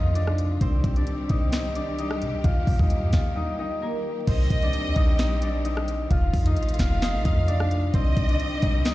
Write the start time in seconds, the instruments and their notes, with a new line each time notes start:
Already playing: 808-style bass F2, string section C3 F3 A3 F4, harp D#4 F4 D#5 F5
0.15 harp D4 D5, closed hi-hat
0.27 cross-stick
0.38 closed hi-hat
0.61 808-style bass C2, string section D#3 G3 C4 G4, harp C4 C5, kick, closed hi-hat
0.84 808-style bass C2, kick, closed hi-hat
0.96 harp D4 D5, closed hi-hat
1.07 closed hi-hat
1.29 808-style bass C2, harp D#4 D#5, kick, closed hi-hat
1.52 harp D#4 D#5, finger snap, snare, closed hi-hat
1.75 harp D4 D5, closed hi-hat
1.98 harp D#4 D#5, closed hi-hat
2.11 cross-stick
2.21 808-style bass C3, closed hi-hat
2.34 808-style bass C2
2.44 808-style bass D#2, string section A#3, harp F4 F5, kick, closed hi-hat
2.67 808-style bass D#2, kick, open hi-hat
2.79 808-style bass D#2, harp D#4 D#5, kick
2.90 closed hi-hat
3.02 808-style bass G2
3.13 808-style bass D#2, harp F4 F5, finger snap, kick, snare, closed hi-hat
3.36 harp D#4 D#5
3.59 harp D#4 D#5
3.82 harp A#3 A#4
4.27 808-style bass C2, string section D#3 G3 C4 G4, harp C4 C5, violin section D#5, kick, closed hi-hat, crash
4.50 808-style bass C2, kick, closed hi-hat
4.63 harp D4 D5, closed hi-hat
4.73 closed hi-hat
4.85 808-style bass D#2
4.96 808-style bass A#1, harp D#4 D#5, kick, closed hi-hat
5.19 harp D#4 D#5, finger snap, snare, closed hi-hat
5.42 harp D4 D5, closed hi-hat
5.65 harp D#4 D#5, closed hi-hat
5.77 cross-stick
5.88 closed hi-hat
6.11 808-style bass F1, string section C3 F3 A3 F4, harp F4 F5, kick, closed hi-hat
6.33 808-style bass F2, violin section F5, kick, closed hi-hat, open hi-hat
6.46 harp D#4 D#5, closed hi-hat
6.57 808-style bass A1, closed hi-hat
6.63 closed hi-hat
6.69 closed hi-hat
6.74 closed hi-hat
6.79 808-style bass F1, harp F4 F5, finger snap, kick, snare, closed hi-hat
7.02 harp D#4 D#5, finger snap, snare, closed hi-hat
7.14 808-style bass A1
7.25 808-style bass F2, harp D#4 D#5, kick, closed hi-hat
7.48 harp D4 D5, closed hi-hat
7.60 cross-stick
7.71 closed hi-hat
7.94 808-style bass C2, string section D#3 G3 C4 G4, harp C4 C5, violin section D#5, kick, closed hi-hat
8.17 808-style bass C2, kick, closed hi-hat
8.29 harp D4 D5, closed hi-hat
8.40 closed hi-hat
8.62 808-style bass C2, harp D#4 D#5, kick, closed hi-hat
8.85 harp D#4 D#5, finger snap, snare, closed hi-hat